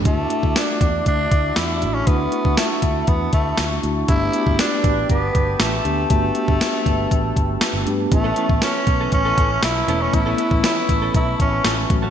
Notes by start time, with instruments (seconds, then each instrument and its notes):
0.04 picked electric bass D2, tine electric piano A3 D4 E4 F#4, tenor saxophone A3, analog synth pad F#4 E5 A5 D6, kick, closed hi-hat
0.29 tine electric piano A3 D4 E4 A4, closed hi-hat
0.43 picked electric bass D2, kick
0.56 tenor saxophone D4, snare, closed hi-hat
0.81 picked electric bass E2, kick, closed hi-hat
1.06 picked electric bass D2, tenor saxophone D4, kick, closed hi-hat
1.32 picked electric bass D2, kick, closed hi-hat
1.56 picked electric bass E2, tenor saxophone E4, snare, closed hi-hat
1.81 picked electric bass A1, tine electric piano A3 D4 E4 F#4, closed hi-hat
1.95 tenor saxophone C#4
2.06 picked electric bass D2, tine electric piano A3 D4 E4 F#4, tenor saxophone B3, analog synth pad C#6, kick, closed hi-hat
2.32 tine electric piano A3 D4 E4 F#4, closed hi-hat
2.45 picked electric bass D2, kick
2.57 tenor saxophone A3, snare, closed hi-hat
2.82 picked electric bass D2, kick, closed hi-hat
3.07 picked electric bass E2, tenor saxophone B3, kick, closed hi-hat
3.33 picked electric bass D2, tenor saxophone A3, kick, closed hi-hat
3.58 picked electric bass D2, snare, closed hi-hat
3.83 picked electric bass D2, tine electric piano A3 D4 E4 F#4, closed hi-hat
4.08 picked electric bass G1, tine electric piano A3 B3 D4 G4, tenor saxophone E4, analog synth pad B4 G5 D6, kick, closed hi-hat
4.33 tine electric piano A3 B3 D4 F#4, closed hi-hat
4.40 tine electric piano G4
4.47 picked electric bass G1, kick
4.59 tenor saxophone D4, snare, closed hi-hat
4.84 picked electric bass A1, kick, closed hi-hat
5.10 picked electric bass G1, tenor saxophone B3, kick, closed hi-hat
5.35 picked electric bass G1, kick, closed hi-hat
5.60 picked electric bass A1, tenor saxophone A3, snare, closed hi-hat
5.84 picked electric bass D2, tine electric piano A3 B3 D4 G4, closed hi-hat
6.10 picked electric bass G1, tine electric piano A3 B3 D4 F#4, tenor saxophone A3, analog synth pad E6, kick, closed hi-hat
6.35 tine electric piano A3 B3 D4 G4, closed hi-hat
6.48 picked electric bass G1, kick
6.61 snare, closed hi-hat
6.86 picked electric bass G1, kick, closed hi-hat
7.11 picked electric bass A1, kick, closed hi-hat
7.36 picked electric bass G1, kick, closed hi-hat
7.61 snare, closed hi-hat
7.73 picked electric bass G1
7.86 picked electric bass G2, tine electric piano A3 B3 D4 G4, closed hi-hat
8.11 picked electric bass A1, tine electric piano A3 B3 C#4 E4, tenor saxophone A3, analog synth pad E5 C#6, muted clean electric guitar stroke, kick, closed hi-hat
8.24 clean electric guitar E3 B3 C#4 A4
8.36 clean electric guitar E3 B3 C#4 A4, tine electric piano A3 B3 C#4 E4, closed hi-hat
8.49 picked electric bass A1, muted clean electric guitar stroke, kick
8.62 clean electric guitar E3 B3 C#4 A4, tenor saxophone C#4, snare, closed hi-hat
8.75 muted clean electric guitar stroke
8.87 picked electric bass B1, muted clean electric guitar stroke, kick, closed hi-hat
9.01 clean electric guitar E3 B3 C#4 A4
9.12 picked electric bass A1, tenor saxophone C#4, muted clean electric guitar stroke, kick, closed hi-hat
9.25 clean electric guitar E3 B3 C#4 A4
9.38 picked electric bass A1, clean electric guitar E3 B3 C#4 A4, kick, closed hi-hat
9.51 muted clean electric guitar stroke
9.63 picked electric bass B1, tenor saxophone E4, muted clean electric guitar stroke, snare, closed hi-hat
9.76 muted clean electric guitar stroke
9.88 picked electric bass E1, clean electric guitar E3 B3 C#4 A4, tine electric piano A3 B3 C#4 E4, closed hi-hat
10.00 clean electric guitar E3 B3 C#4 A4, tenor saxophone C#4
10.13 picked electric bass A1, tine electric piano A3 B3 C#4 E4, tenor saxophone E4, muted clean electric guitar stroke, kick, closed hi-hat
10.26 clean electric guitar E3 B3 C#4 A4
10.38 clean electric guitar E3 B3 C#4 A4, tine electric piano A3 B3 C#4 E4, closed hi-hat
10.51 picked electric bass A1, muted clean electric guitar stroke, kick
10.64 clean electric guitar E3 B3 C#4 A4, tenor saxophone E4, snare, closed hi-hat
10.77 muted clean electric guitar stroke
10.89 picked electric bass A1, muted clean electric guitar stroke, kick, closed hi-hat
11.02 clean electric guitar E3 B3 C#4 A4
11.14 picked electric bass B1, tenor saxophone E4, muted clean electric guitar stroke, kick, closed hi-hat
11.27 muted clean electric guitar stroke
11.40 picked electric bass A1, tenor saxophone C#4, kick, closed hi-hat
11.52 muted clean electric guitar stroke
11.65 picked electric bass A1, clean electric guitar E3 B3 C#4 A4, snare, closed hi-hat
11.77 muted clean electric guitar stroke
11.90 picked electric bass A1, tine electric piano F#3 A3 C#4 F#4, analog synth pad F#4 C#5, muted clean electric guitar stroke, kick, closed hi-hat
12.02 clean electric guitar A3 C#4 F#4 A4